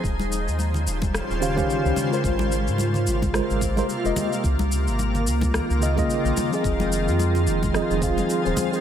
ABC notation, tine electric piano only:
X:1
M:4/4
L:1/16
Q:"Swing 16ths" 1/4=109
K:Ebmix
V:1 name="Tine electric piano"
z8 z2 [E,DGcf] [E,DGcf]4 [A,FBc]- | [A,FBc]8 [A,FBc]3 [A,FBc] z [A,FBe]3 | z8 z2 [D,B,Fe] [D,B,Fe]4 [F,CAe]- | [F,CAe]8 [F,CAe]2 [F,CAf]3 [F,CAc]2 [F,CAc] |]